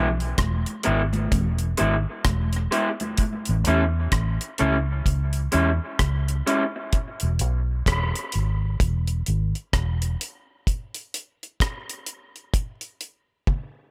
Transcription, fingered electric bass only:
0.00 0.33 B1 medium
0.39 0.63 E1 medium
0.87 1.27 G#1 medium
1.33 1.73 E1 loud
1.81 2.04 G#1 medium
2.26 2.66 E1 loud
3.49 3.64 A1 loud
3.67 4.07 E2 medium
4.13 4.37 A1 medium
4.61 5.01 C#2 medium
5.06 5.47 C#2 loud
5.54 5.78 E2 loud
6.00 6.41 C#2 medium
7.23 7.41 E1 medium
7.41 7.81 B1 medium
7.87 8.12 E1 medium
8.35 8.75 G#1 medium
8.81 9.21 E1 loud
9.28 9.52 G#1 medium
9.74 10.14 E1 loud

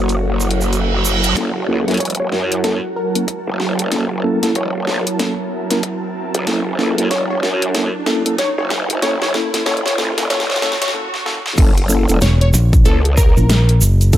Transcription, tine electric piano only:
0.00 1.34 A#3 medium
0.00 1.34 C#4 medium
0.00 1.34 E4 medium
0.00 1.34 A4 medium
1.37 1.49 A#3 medium
1.37 1.49 C#4 medium
1.37 1.49 E4 medium
1.37 1.49 A4 medium
1.68 1.83 A#3 medium
1.68 1.83 C#4 medium
1.68 1.83 E4 medium
1.68 1.83 A4 medium
1.88 1.96 A#3 medium
1.88 1.96 C#4 medium
1.88 1.96 E4 medium
1.88 1.96 A4 medium
2.64 2.77 A#3 medium
2.64 2.77 C#4 medium
2.64 2.77 E4 medium
2.64 2.77 A4 medium
3.15 3.24 A#3 medium
3.15 3.24 C#4 medium
3.15 3.24 E4 medium
3.15 3.24 A#4 medium
3.92 4.04 A#3 medium
3.92 4.04 C#4 medium
3.92 4.04 E4 medium
3.92 4.04 A4 medium
4.24 4.38 A#3 medium
4.24 4.38 C#4 medium
4.24 4.38 E4 medium
4.24 4.39 A4 medium
4.43 4.51 A#3 medium
4.43 4.51 C#4 medium
4.43 4.51 E4 medium
4.43 4.51 A4 medium
5.19 5.32 A#3 medium
5.19 5.32 C#4 medium
5.19 5.32 E4 medium
5.19 5.32 A4 medium
5.71 5.79 A#3 medium
5.71 5.79 C#4 medium
5.71 5.79 E4 medium
5.71 5.79 A#4 medium
6.47 6.60 A#3 medium
6.47 6.60 C#4 medium
6.47 6.60 E4 medium
6.47 6.60 A4 medium
6.79 6.94 A#3 medium
6.79 6.94 C#4 medium
6.79 6.94 E4 medium
6.79 6.94 A4 medium
6.98 7.06 A#3 medium
6.98 7.06 C#4 medium
6.98 7.06 E4 medium
6.98 7.06 A4 medium
7.75 7.87 A#3 medium
7.75 7.87 C#4 medium
7.75 7.87 E4 medium
7.75 7.87 A4 medium
8.07 8.21 A#3 medium
8.07 8.21 C#4 medium
8.07 8.21 E4 medium
8.07 8.21 A4 medium
8.26 8.34 A#3 medium
8.26 8.34 C#4 medium
8.26 8.34 E4 medium
8.26 8.34 A4 medium
9.02 9.15 A#3 medium
9.02 9.15 C#4 medium
9.02 9.15 E4 medium
9.02 9.15 A4 loud
9.34 9.49 A#3 medium
9.34 9.49 C#4 medium
9.34 9.49 E4 medium
9.34 9.49 A4 medium
9.54 9.62 A#3 medium
9.54 9.62 C#4 medium
9.54 9.62 E4 medium
9.54 9.62 A4 medium
9.66 9.79 A#3 loud
9.66 9.79 C#4 medium
9.66 9.79 E4 medium
9.66 9.79 A4 loud
9.98 10.13 A#3 medium
9.98 10.13 C#4 medium
9.98 10.13 E4 medium
9.98 10.13 A4 medium
10.18 10.26 A#3 medium
10.18 10.26 C#4 medium
10.18 10.26 E4 medium
10.18 10.26 A4 medium
10.30 10.43 A#3 medium
10.30 10.43 C#4 medium
10.30 10.43 E4 medium
10.30 10.43 A4 loud
10.62 10.75 A#3 medium
10.62 10.75 C#4 medium
10.62 10.75 E4 medium
10.62 10.75 A4 loud
10.94 11.07 A#3 medium
10.94 11.07 C#4 medium
10.94 11.07 E4 medium
10.94 11.07 A4 loud
11.26 11.38 A#3 loud
11.26 11.38 C#4 medium
11.26 11.38 E4 medium
11.26 11.38 A4 loud
11.58 11.70 A#3 medium
11.58 11.70 C#4 medium
11.58 11.70 E4 medium
11.58 11.70 A4 loud
11.90 12.04 A#3 medium
11.90 12.04 C#4 medium
11.90 12.04 E4 medium
11.90 12.04 A4 medium
12.09 12.17 A#3 medium
12.09 12.17 C#4 medium
12.09 12.17 E4 medium
12.09 12.17 A4 medium
12.85 12.98 A#3 medium
12.85 12.98 C#4 medium
12.85 12.98 E4 medium
12.85 12.98 A4 medium
13.37 13.45 A#3 medium
13.37 13.45 C#4 medium
13.37 13.45 E4 medium
13.37 13.45 A#4 medium
14.13 14.18 A#3 loud
14.13 14.18 C#4 medium
14.13 14.18 E4 medium
14.13 14.18 A4 loud

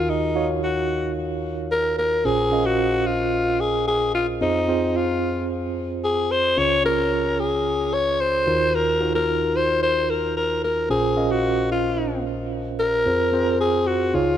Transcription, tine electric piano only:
0.00 1.94 D#2 medium
0.00 1.94 D#3 medium
0.00 0.31 D#4 medium
0.00 0.31 F4 medium
0.00 0.32 F#4 medium
0.00 0.32 A#4 medium
0.35 1.35 D#4 medium
0.35 1.35 F#4 medium
0.35 1.36 C#5 medium
0.35 1.35 F5 medium
2.25 4.37 A#1 medium
2.25 4.38 A#2 medium
2.25 2.50 C#4 medium
2.25 2.50 F4 medium
2.25 2.50 A#4 medium
2.25 2.50 C5 medium
2.52 3.51 C#4 medium
2.52 3.52 A#4 medium
2.52 3.52 D#5 medium
2.52 3.52 F5 medium
4.41 6.54 F2 medium
4.41 4.66 C4 medium
4.41 4.66 F4 medium
4.41 4.66 G#4 medium
4.41 4.67 C5 medium
4.68 5.68 C4 medium
4.68 5.68 F4 medium
4.68 5.68 G#4 medium
4.68 5.68 C5 medium
6.57 8.43 C#2 medium
6.57 8.43 C#3 medium
6.57 6.82 C#4 medium
6.57 6.82 F4 medium
6.57 6.83 G#4 medium
6.57 6.83 C#5 medium
6.84 7.84 C#4 medium
6.84 7.84 F4 medium
6.84 7.84 G#4 medium
6.84 7.84 C#5 medium
8.46 10.59 D#2 medium
8.46 10.59 D#3 medium
8.46 8.96 D#4 medium
8.46 8.96 F4 medium
8.46 8.97 F#4 medium
8.46 8.97 A#4 medium
9.00 10.00 D#4 medium
9.00 10.00 F4 medium
9.00 10.00 F#4 medium
9.00 10.01 A#4 medium
10.90 13.02 A#1 medium
10.90 13.02 A#2 medium
10.90 11.15 C#4 medium
10.90 11.15 F4 medium
10.90 11.15 A#4 medium
10.90 11.15 C5 medium
11.16 12.16 C#4 medium
11.16 12.17 A#4 medium
11.16 12.17 D#5 medium
11.16 12.16 F5 medium
13.06 14.10 F2 medium
13.06 13.31 C4 medium
13.06 13.31 F4 medium
13.06 13.31 G#4 medium
13.06 13.31 C5 medium
13.32 14.14 C4 medium
13.32 14.13 F4 medium
13.32 14.13 G#4 medium
13.32 14.15 C5 medium
14.14 14.38 C#2 medium
14.14 14.38 C#3 medium
14.14 14.38 D#4 medium
14.14 14.38 F4 medium
14.14 14.38 G#4 medium
14.14 14.38 C#5 medium

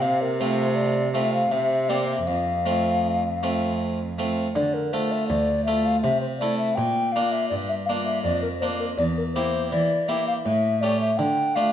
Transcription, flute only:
0.02 0.23 F5 medium
0.21 0.41 A#4 medium
0.40 0.77 C5 medium
0.76 1.12 D5 medium
1.13 1.31 E5 medium
1.33 1.53 F5 medium
1.52 1.91 E5 medium
1.89 2.08 D5 soft
2.09 2.28 E5 soft
2.27 3.80 F5 medium
4.55 4.75 D5 medium
4.74 4.94 A#4 medium
4.93 5.13 C5 soft
5.12 5.27 E5 medium
5.28 5.64 D5 medium
5.65 5.87 E5 medium
5.85 6.00 F5 medium
6.01 6.20 E5 medium
6.21 6.27 C5 medium
6.39 6.58 D5 medium
6.58 6.77 E5 medium
6.75 7.14 G5 medium
7.12 7.33 F5 medium
7.32 7.48 E5 medium
7.49 7.55 D5 medium
7.69 7.75 E5 medium
7.86 7.92 F5 medium
8.05 8.22 E5 medium
8.23 8.42 D5 medium
8.42 8.48 A#4 medium
8.60 8.66 C5 medium
8.79 8.85 A#4 soft
8.98 9.04 D5 medium
9.17 9.23 A#4 medium
9.34 9.71 C5 medium
9.71 10.10 D5 medium
10.09 10.27 E5 medium
10.28 10.34 F5 medium
10.45 10.83 E5 medium
10.81 11.00 D5 medium
11.01 11.19 E5 medium
11.18 11.57 G5 medium
11.55 11.72 F5 medium

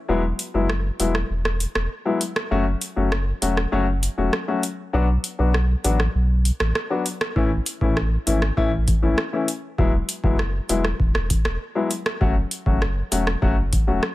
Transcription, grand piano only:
0.09 0.21 F#3 medium
0.09 0.21 G#3 medium
0.09 0.21 B3 medium
0.09 0.21 E4 medium
0.54 0.66 F#3 medium
0.54 0.67 G#3 medium
0.54 0.67 B3 medium
0.54 0.67 E4 medium
1.00 1.12 F#3 medium
1.00 1.12 G#3 medium
1.00 1.12 B3 medium
1.00 1.12 E4 medium
2.05 2.18 F#3 medium
2.05 2.18 G#3 medium
2.05 2.18 B3 medium
2.05 2.18 E4 medium
2.51 2.63 F#3 medium
2.51 2.63 A3 medium
2.51 2.64 C#4 medium
2.51 2.64 F#4 loud
2.96 3.09 F#3 medium
2.96 3.09 A3 medium
2.96 3.09 C#4 medium
2.96 3.09 F#4 medium
3.42 3.54 F#3 medium
3.42 3.54 A3 medium
3.42 3.54 C#4 medium
3.42 3.55 F#4 medium
3.72 3.85 F#3 medium
3.72 3.85 A3 medium
3.72 3.85 C#4 medium
3.72 3.85 F#4 loud
4.18 4.30 F#3 medium
4.18 4.30 A3 medium
4.18 4.30 C#4 medium
4.18 4.30 F#4 medium
4.48 4.60 F#3 medium
4.48 4.60 A3 medium
4.48 4.61 C#4 medium
4.48 4.61 F#4 medium
4.93 5.06 F#3 medium
4.93 5.06 B3 medium
4.93 5.06 D4 medium
4.93 5.06 F#4 loud
5.39 5.51 F#3 medium
5.39 5.51 B3 medium
5.39 5.51 D4 medium
5.39 5.51 F#4 medium
5.84 5.97 F#3 medium
5.84 5.97 B3 medium
5.84 5.97 D4 medium
5.84 5.97 F#4 medium
6.90 7.03 F#3 medium
6.90 7.03 B3 medium
6.90 7.03 D4 medium
6.90 7.03 F#4 medium
7.36 7.48 E3 medium
7.36 7.48 A3 medium
7.36 7.48 C#4 medium
7.36 7.49 E4 medium
7.81 7.94 E3 medium
7.81 7.94 A3 medium
7.81 7.94 C#4 medium
7.81 7.94 E4 medium
8.27 8.39 E3 medium
8.27 8.39 A3 medium
8.27 8.39 C#4 medium
8.27 8.39 E4 medium
8.57 8.69 E3 medium
8.57 8.69 A3 medium
8.57 8.70 C#4 medium
8.57 8.70 E4 loud
9.02 9.15 E3 medium
9.02 9.15 A3 medium
9.02 9.15 C#4 medium
9.02 9.15 E4 medium
9.33 9.45 E3 medium
9.33 9.45 A3 medium
9.33 9.45 C#4 medium
9.33 9.46 E4 medium
9.78 9.91 F#3 medium
9.78 9.91 G#3 medium
9.78 9.91 B3 medium
9.78 9.91 E4 loud
10.24 10.36 F#3 medium
10.24 10.36 G#3 medium
10.24 10.36 B3 medium
10.24 10.36 E4 medium
10.69 10.82 F#3 medium
10.69 10.82 G#3 medium
10.69 10.82 B3 medium
10.69 10.82 E4 medium
11.75 11.88 F#3 medium
11.75 11.88 G#3 medium
11.75 11.88 B3 medium
11.75 11.88 E4 medium
12.21 12.33 F#3 medium
12.21 12.33 A3 medium
12.21 12.33 C#4 medium
12.21 12.33 F#4 loud
12.66 12.79 F#3 medium
12.66 12.79 A3 medium
12.66 12.79 C#4 medium
12.66 12.79 F#4 medium
13.12 13.24 F#3 medium
13.12 13.24 A3 medium
13.12 13.24 C#4 medium
13.12 13.24 F#4 medium
13.42 13.54 F#3 medium
13.42 13.54 A3 medium
13.42 13.54 C#4 medium
13.42 13.55 F#4 loud
13.87 14.00 F#3 medium
13.87 14.00 A3 medium
13.87 14.00 C#4 medium
13.87 14.00 F#4 medium

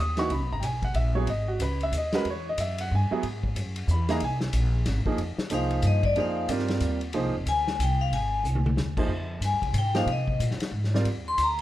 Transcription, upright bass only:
0.00 0.29 D#2 loud
0.30 0.40 C#2 medium
0.40 0.51 B1 medium
0.52 0.61 G#1 medium
0.61 0.93 B1 medium
0.94 1.26 A#1 medium
1.27 1.59 G#1 medium
1.59 1.91 C#2 medium
1.91 2.24 D#2 medium
2.25 2.57 E2 medium
2.57 2.89 F#2 medium
2.91 3.10 G2 loud
3.11 muted upright bass stroke soft
3.23 3.54 G#2 medium
3.55 3.87 F#2 medium
3.88 4.20 E2 medium
4.21 4.52 C2 medium
4.53 4.85 A#1 medium
4.86 5.05 G#1 loud
5.18 5.37 F2 medium
5.37 muted upright bass stroke soft
5.50 5.82 C2 medium
5.83 6.15 G2 medium
6.48 6.80 G2 medium
6.80 7.12 D#2 medium
7.15 7.26 C2 medium
7.25 7.35 G#1 medium
7.35 7.45 F1 medium
7.45 7.78 D2 medium
7.79 8.10 C2 medium
8.11 8.43 G#1 medium
8.43 8.76 C2 medium
8.76 9.07 D#2 medium
9.08 9.40 F2 medium
9.40 9.54 G2 medium
9.52 9.62 D#2 medium
9.63 9.73 C2 medium
9.73 10.06 G#2 loud
10.06 10.38 C3 medium
10.40 10.58 A#2 medium
10.58 muted upright bass stroke soft
10.71 11.04 G#2 loud
11.05 11.37 D#2 medium
11.37 11.61 D2 medium

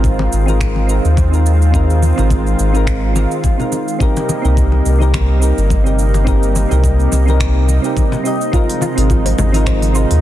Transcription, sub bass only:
0.00 0.28 G#1 medium
0.33 1.00 G#1 medium
1.05 2.13 D#2 medium
2.18 2.55 G#1 loud
2.59 3.26 G#1 medium
4.45 4.81 C2 loud
4.85 5.52 C2 medium
5.57 6.65 G1 medium
6.71 7.08 C2 loud
7.12 7.79 C2 medium
8.97 9.34 G#1 loud
9.38 10.05 G#1 medium
10.11 10.21 D#2 medium

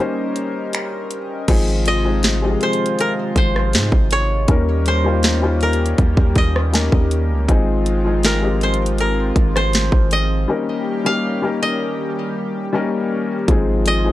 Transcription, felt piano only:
0.00 1.50 G3 medium
0.00 1.50 A#3 medium
0.00 1.50 C#4 medium
0.00 1.50 D#4 medium
0.00 1.50 A#4 medium
0.00 1.16 C5 medium
1.48 1.92 F3 medium
1.48 1.92 G#3 medium
1.48 1.93 C4 medium
1.48 1.93 D#4 medium
1.48 1.93 G#4 loud
2.04 2.34 F3 medium
2.04 2.34 G#3 medium
2.04 2.34 C4 medium
2.04 2.35 D#4 medium
2.04 2.35 G#4 medium
2.42 3.59 F3 medium
2.42 3.59 G#3 medium
2.42 3.59 C4 medium
2.42 3.60 D#4 medium
2.42 2.50 G4 medium
2.51 3.63 G#4 medium
4.48 4.92 G3 medium
4.48 4.92 A#3 medium
4.48 4.93 C#4 medium
4.48 4.93 D#4 medium
4.48 4.93 A#4 medium
5.04 5.34 G3 medium
5.04 5.34 A#3 medium
5.04 5.34 C#4 medium
5.04 5.35 D#4 medium
5.04 5.35 F4 medium
5.42 6.59 G3 medium
5.42 6.59 A#3 medium
5.42 6.59 C#4 medium
5.42 6.60 D#4 medium
5.42 6.60 F4 medium
6.73 7.33 G3 medium
6.73 7.33 A#3 medium
6.73 7.34 C#4 medium
6.73 7.34 D#4 medium
6.73 7.34 A#4 medium
7.48 7.92 F3 medium
7.48 7.92 G#3 medium
7.48 7.93 C4 medium
7.48 7.93 D#4 medium
7.48 7.93 G#4 loud
8.04 8.34 F3 medium
8.04 8.34 G#3 medium
8.04 8.34 C4 medium
8.04 8.35 D#4 medium
8.04 8.35 G#4 medium
8.42 9.59 F3 medium
8.42 9.59 G#3 medium
8.42 9.59 C4 medium
8.42 9.60 D#4 medium
8.42 9.60 G4 medium
10.48 10.92 G3 medium
10.48 10.92 A#3 medium
10.48 10.93 C#4 medium
10.48 10.93 D#4 medium
10.48 10.93 A#4 medium
11.04 11.34 G3 medium
11.04 11.34 A#3 medium
11.04 11.34 C#4 medium
11.04 11.35 D#4 medium
11.04 11.35 G4 medium
11.42 12.59 G3 medium
11.42 12.59 A#3 medium
11.42 12.59 C#4 medium
11.42 12.60 D#4 medium
11.42 12.60 A#4 medium
12.73 13.33 G3 medium
12.73 13.33 A#3 medium
12.73 13.34 C#4 medium
12.73 13.34 D#4 medium
12.73 13.34 A#4 loud
13.48 13.92 F3 medium
13.48 13.92 G#3 medium
13.48 13.93 C4 medium
13.48 13.93 D#4 medium
13.48 13.93 G#4 loud
14.04 14.12 F3 medium
14.04 14.12 G#3 medium
14.04 14.12 C4 medium
14.04 14.12 D#4 medium
14.04 14.12 G#4 medium

